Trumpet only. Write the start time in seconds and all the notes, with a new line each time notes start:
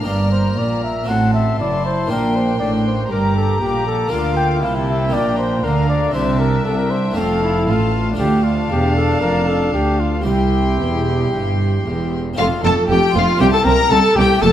0.06 D5
0.32 C5
0.58 D5
0.83 E5
1.08 F#5
1.34 E5
1.60 D5
1.86 C5
2.12 A#4
2.36 C5
2.60 D5
2.86 C5
3.11 A#4
3.36 A4
3.61 G4
3.86 A4
4.11 A#4
4.36 G5
4.63 F5
4.88 E5
5.13 D5
5.38 C5
5.64 A#4
5.89 D5
6.14 C5
6.39 A#4
6.65 A4
6.78 A#4
6.90 C5
7.16 A4
8.19 G4
8.44 F4
8.71 G4
8.96 A4
9.21 A#4
9.47 A4
9.73 G4
10.00 F4
10.25 E4
12.37 F4
12.64 A4
12.90 G4
13.15 F4
13.40 G4
13.53 A4
13.64 A#4
13.91 A4
14.16 G4
14.41 A4